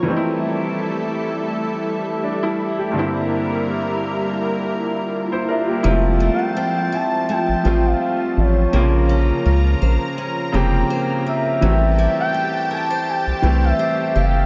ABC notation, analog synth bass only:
X:1
M:4/4
L:1/16
Q:"Swing 16ths" 1/4=83
K:F
V:1 name="Analog synth bass" clef=bass
z16 | z16 | F,,,3 z6 A,,, A,,,2 z2 A,,,2 | B,,,4 _D,,2 B,,, z3 F,,,2 z4 |
A,,,3 z6 C,, C,,2 z2 _G,,,2 |]